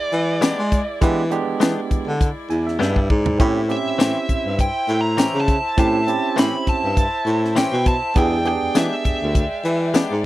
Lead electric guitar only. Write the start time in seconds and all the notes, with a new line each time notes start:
Already playing: D5
3.72 E5
4.61 G5
5.01 A#5
5.40 A5
5.79 A5
6.39 B5
6.69 A5
7.57 G5
7.88 A5
8.18 G5
8.48 G5
8.77 E5